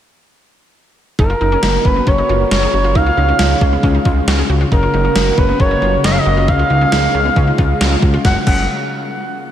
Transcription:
1.19 1.34 F#1 loud
1.19 8.21 C#3 medium
1.19 2.94 A#3 medium
1.19 1.27 D#4 loud
1.19 2.94 F#4 medium
1.19 1.87 A#4 medium
1.19 kick loud
1.30 1.38 F4 medium
1.41 1.56 F#1 medium
1.41 1.49 D#4 medium
1.52 1.60 C#4 medium
1.63 1.78 F#1 loud
1.63 1.80 D#4 medium
1.63 snare loud
1.85 2.00 F#1 loud
1.85 1.93 C#4 medium
1.85 2.09 B4 medium
1.85 kick medium
1.96 2.04 B3 medium
2.07 2.22 F#1 loud
2.07 2.15 C#4 medium
2.07 2.51 C#5 loud
2.07 kick medium
2.18 2.27 D#4 medium
2.29 2.45 F#1 medium
2.29 2.46 F4 medium
2.51 2.67 F#1 loud
2.51 2.60 F#4 medium
2.51 2.97 C#5 medium
2.51 snare loud
2.62 2.71 G#4 medium
2.73 2.97 F#1 medium
2.73 2.82 F#4 medium
2.84 2.93 F4 medium
2.95 3.11 C#2 loud
2.95 4.70 G#3 medium
2.95 3.04 D#4 medium
2.95 4.70 F4 medium
2.95 3.83 F5 loud
2.95 kick loud
3.06 3.15 F4 medium
3.17 3.33 C#2 medium
3.17 3.26 D#4 medium
3.29 3.37 C#4 medium
3.39 3.55 C#2 loud
3.39 3.56 D#4 medium
3.39 snare loud
3.61 3.77 C#2 loud
3.61 3.70 C#4 medium
3.61 kick medium
3.73 3.81 B3 medium
3.83 3.99 C#2 loud
3.83 3.92 C#4 medium
3.83 kick medium
3.95 4.03 D#4 medium
4.05 4.21 C#2 loud
4.05 4.22 F4 medium
4.05 kick loud
4.27 4.43 C#2 loud
4.27 4.36 F#4 medium
4.27 snare loud
4.39 4.47 G#4 medium
4.49 4.65 C#2 loud
4.49 4.58 F#4 medium
4.61 4.69 F4 medium
4.72 4.87 F#1 loud
4.72 6.46 A#3 medium
4.72 4.80 D#4 medium
4.72 6.46 F#4 medium
4.72 5.39 A#4 medium
4.72 kick loud
4.83 4.91 F4 medium
4.93 5.09 F#1 loud
4.93 5.02 D#4 medium
5.05 5.13 C#4 medium
5.16 5.31 F#1 loud
5.16 5.32 D#4 medium
5.16 snare loud
5.38 5.53 F#1 loud
5.38 5.46 C#4 medium
5.38 5.59 B4 medium
5.38 kick medium
5.49 5.57 B3 medium
5.60 5.75 F#1 loud
5.60 5.68 C#4 medium
5.60 6.01 C#5 loud
5.60 kick medium
5.71 5.79 D#4 medium
5.82 5.97 F#1 loud
5.82 5.99 F4 medium
6.04 6.19 F#1 loud
6.04 6.12 F#4 medium
6.04 6.13 D#5 medium
6.04 snare loud
6.11 6.23 G#4 medium
6.11 6.20 F5 medium
6.18 6.50 D#5 loud
6.26 6.50 F#1 loud
6.26 6.34 F#4 medium
6.37 6.45 F4 medium
6.48 6.64 C#2 loud
6.48 8.23 G#3 medium
6.48 6.57 D#4 medium
6.48 8.23 F4 medium
6.48 7.81 F5 loud
6.48 kick loud
6.59 6.68 F4 medium
6.70 6.86 C#2 medium
6.70 6.78 D#4 medium
6.81 6.90 C#4 medium
6.92 7.08 C#2 loud
6.92 7.09 D#4 medium
6.92 snare loud
7.14 7.30 C#2 loud
7.14 7.23 C#4 medium
7.25 7.34 B3 medium
7.36 7.52 C#2 loud
7.36 7.45 C#4 medium
7.36 kick medium
7.47 7.56 D#4 medium
7.58 7.74 C#2 loud
7.58 7.75 F4 medium
7.58 kick loud
7.81 7.96 C#2 loud
7.81 7.89 F#4 medium
7.81 snare loud
7.92 8.00 G#4 medium
8.02 8.18 C#2 loud
8.02 8.11 F#4 medium
8.02 kick medium
8.14 8.22 F4 medium
8.25 8.37 F#1 loud
8.25 8.45 C#3 medium
8.25 8.37 F#3 medium
8.25 8.45 A#3 medium
8.25 8.45 F#4 medium
8.25 8.37 F#5 medium
8.25 kick loud
8.25 snare medium
8.47 8.67 F#1 loud
8.47 8.67 F#3 medium
8.47 8.67 F#5 medium
8.47 kick loud
8.47 crash medium

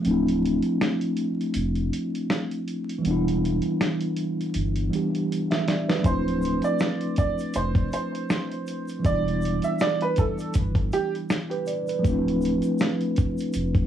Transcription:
0.00 2.98 F3 medium
0.00 2.99 A3 medium
0.05 0.60 D1 loud
0.05 3.01 C4 medium
0.05 3.02 D4 medium
0.05 closed hi-hat medium
0.11 3.04 E4 medium
0.28 closed hi-hat soft
0.45 closed hi-hat medium
0.62 closed hi-hat soft
0.81 snare loud
0.81 closed hi-hat medium
1.01 closed hi-hat soft
1.17 closed hi-hat medium
1.41 closed hi-hat soft
1.54 1.90 F1 loud
1.54 closed hi-hat loud
1.75 closed hi-hat soft
1.93 closed hi-hat medium
2.15 closed hi-hat soft
2.30 snare medium
2.30 closed hi-hat medium
2.51 closed hi-hat soft
2.68 closed hi-hat medium
2.89 closed hi-hat medium
2.98 4.85 E3 medium
2.98 4.87 G3 medium
3.05 3.60 E1 medium
3.05 4.88 B3 medium
3.05 4.90 D4 medium
3.05 closed hi-hat medium
3.11 4.91 E4 medium
3.28 closed hi-hat medium
3.45 closed hi-hat medium
3.62 closed hi-hat soft
3.81 snare loud
3.81 closed hi-hat medium
4.01 closed hi-hat soft
4.16 closed hi-hat medium
4.41 closed hi-hat soft
4.54 4.90 G1 medium
4.54 closed hi-hat loud
4.76 closed hi-hat soft
4.89 6.03 E3 medium
4.89 6.04 G3 medium
4.89 6.05 B3 medium
4.93 6.05 D4 medium
4.93 6.06 G4 medium
4.93 closed hi-hat medium
5.15 closed hi-hat soft
5.32 closed hi-hat medium
5.51 5.66 E5 medium
5.51 snare medium
5.51 closed hi-hat soft
5.67 5.87 D5 medium
5.67 snare medium
5.67 closed hi-hat medium
5.89 6.24 B4 medium
5.89 snare medium
5.89 closed hi-hat soft
5.99 8.98 F3 medium
5.99 8.99 A3 medium
6.04 6.60 D1 loud
6.04 9.01 C4 medium
6.04 9.02 D4 medium
6.04 6.60 C5 medium
6.04 kick loud
6.04 closed hi-hat medium
6.04 shaker medium
6.11 9.04 E4 medium
6.28 closed hi-hat soft
6.42 closed hi-hat medium
6.42 shaker soft
6.62 7.14 D5 medium
6.62 closed hi-hat soft
6.62 shaker medium
6.79 snare loud
6.79 closed hi-hat medium
6.79 shaker medium
7.01 closed hi-hat soft
7.16 7.55 D5 medium
7.16 kick medium
7.16 closed hi-hat medium
7.16 shaker soft
7.39 closed hi-hat soft
7.39 shaker soft
7.54 7.90 F1 loud
7.54 7.89 C5 medium
7.54 closed hi-hat loud
7.54 shaker medium
7.75 kick medium
7.75 closed hi-hat soft
7.92 9.01 C5 medium
7.92 closed hi-hat medium
7.92 shaker soft
8.15 closed hi-hat soft
8.30 snare loud
8.30 closed hi-hat medium
8.30 shaker medium
8.52 closed hi-hat soft
8.67 closed hi-hat medium
8.67 shaker soft
8.88 closed hi-hat soft
8.88 shaker soft
8.99 11.60 E3 medium
8.99 11.62 G3 medium
9.05 9.60 E1 loud
9.05 11.63 B3 medium
9.05 11.65 D4 medium
9.05 9.64 D5 medium
9.05 kick loud
9.05 closed hi-hat medium
9.05 shaker medium
9.12 11.67 E4 medium
9.28 closed hi-hat soft
9.42 closed hi-hat medium
9.42 shaker soft
9.62 9.78 E5 medium
9.62 closed hi-hat soft
9.62 shaker medium
9.79 9.99 D5 medium
9.79 snare loud
9.79 closed hi-hat medium
9.79 shaker medium
10.01 10.18 B4 medium
10.01 closed hi-hat soft
10.16 10.52 A4 medium
10.16 kick medium
10.16 closed hi-hat medium
10.16 shaker soft
10.39 closed hi-hat soft
10.39 shaker soft
10.54 10.91 G1 medium
10.54 kick medium
10.54 closed hi-hat loud
10.54 shaker medium
10.75 kick medium
10.75 closed hi-hat soft
10.92 11.12 G4 medium
10.92 closed hi-hat medium
10.92 shaker soft
11.15 closed hi-hat soft
11.30 snare loud
11.30 closed hi-hat medium
11.30 shaker medium
11.51 11.66 B4 medium
11.51 closed hi-hat soft
11.66 11.87 D5 medium
11.66 closed hi-hat medium
11.66 shaker soft
11.87 12.24 B4 medium
11.87 closed hi-hat medium
11.87 shaker soft
11.99 13.87 F3 medium
11.99 13.87 A3 medium
12.04 12.60 D1 loud
12.04 13.87 C4 medium
12.04 13.87 D4 medium
12.04 kick loud
12.04 closed hi-hat medium
12.04 shaker medium
12.12 13.87 E4 medium
12.28 closed hi-hat soft
12.41 closed hi-hat medium
12.41 shaker soft
12.62 closed hi-hat soft
12.62 shaker medium
12.79 snare loud
12.79 closed hi-hat medium
12.79 shaker medium
13.01 closed hi-hat soft
13.16 kick medium
13.16 closed hi-hat medium
13.16 shaker soft
13.38 closed hi-hat soft
13.38 shaker soft
13.53 13.87 F1 loud
13.53 closed hi-hat medium
13.53 shaker medium
13.75 kick loud
13.75 closed hi-hat soft

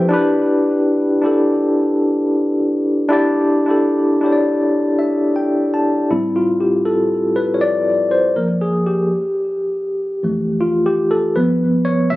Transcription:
0.00 0.11 F3 medium
0.00 0.12 C4 medium
0.00 0.10 E4 medium
0.00 0.12 G4 medium
0.00 0.12 A4 medium
0.00 0.12 B4 medium
0.00 0.12 C5 medium
0.00 0.12 E5 medium
0.00 0.29 G5 medium
0.09 1.06 D4 loud
0.09 1.07 E4 loud
0.09 1.07 G4 loud
0.14 1.08 B4 loud
1.22 2.50 D4 medium
1.22 2.51 E4 medium
1.22 2.51 G4 medium
1.26 2.52 A4 medium
3.08 3.57 D4 loud
3.08 3.58 E4 loud
3.08 3.59 G4 loud
3.13 3.60 D5 loud
3.66 4.14 D4 medium
3.66 4.14 E4 medium
3.66 4.15 G4 medium
3.71 4.16 A4 medium
4.21 5.49 D4 medium
4.21 5.50 E4 medium
4.21 5.51 G4 medium
4.26 4.31 C#5 medium
4.32 5.55 D5 medium
4.99 5.33 E5 medium
5.36 5.70 G5 medium
5.74 6.08 A5 medium
6.10 8.31 A2 medium
6.10 8.32 G3 soft
6.10 8.32 C4 medium
6.10 6.34 E4 medium
6.36 6.61 F4 medium
6.60 6.86 G4 medium
6.85 7.37 A4 medium
7.36 7.55 B4 medium
7.54 7.60 C#5 medium
7.61 8.07 D5 loud
8.11 8.36 C5 medium
8.36 8.86 F#2 soft
8.36 8.86 F3 soft
8.36 8.87 A#3 medium
8.36 8.47 A#4 medium
8.61 8.84 G#4 medium
8.86 9.57 G4 medium
10.23 11.31 F2 medium
10.23 11.32 E3 soft
10.23 11.32 A3 medium
10.61 10.86 F4 medium
10.86 10.97 G4 medium
11.11 11.36 A4 medium
11.36 12.07 G2 soft
11.36 12.07 F3 soft
11.36 12.07 B3 medium
11.36 11.87 B4 medium
11.85 12.11 C#5 loud
12.10 12.16 C3 medium
12.10 12.16 E3 medium
12.10 12.16 A3 medium
12.10 12.16 E5 loud

